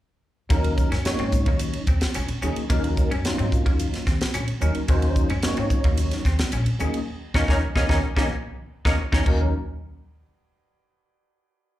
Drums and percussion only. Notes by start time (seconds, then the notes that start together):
0.50 kick, hi-hat pedal, ride
0.64 ride
0.78 kick, hi-hat pedal
0.92 snare, ride
1.05 snare, hi-hat pedal, ride
1.19 ride
1.32 kick, hi-hat pedal
1.46 kick, ride
1.59 hi-hat pedal, ride
1.73 ride
1.87 kick, hi-hat pedal
2.01 snare, ride
2.14 hi-hat pedal, ride
2.28 ride
2.42 hi-hat pedal
2.56 ride
2.70 kick, hi-hat pedal, ride
2.84 ride
2.97 kick, hi-hat pedal
3.11 ride
3.25 snare, hi-hat pedal, ride
3.39 ride
3.52 kick, hi-hat pedal
3.66 kick, ride
3.79 hi-hat pedal, ride
3.94 snare, ride
4.07 kick, snare, hi-hat pedal
4.21 snare, ride
4.34 hi-hat pedal, ride
4.48 ride
4.61 hi-hat pedal
4.75 ride
4.88 kick, hi-hat pedal, ride
5.02 ride
5.16 kick, hi-hat pedal
5.30 ride
5.42 snare, hi-hat pedal, ride
5.57 ride
5.70 kick, hi-hat pedal
5.84 kick, ride
5.97 hi-hat pedal, ride
6.11 snare, ride
6.25 kick, snare, hi-hat pedal
6.39 snare, ride
6.52 hi-hat pedal, ride
6.66 ride
6.80 hi-hat pedal
6.94 ride
7.34 kick, snare
7.48 kick, snare
7.76 kick, snare
7.89 kick, snare
8.17 kick, snare
8.85 kick, snare
9.13 kick, snare
9.26 kick, crash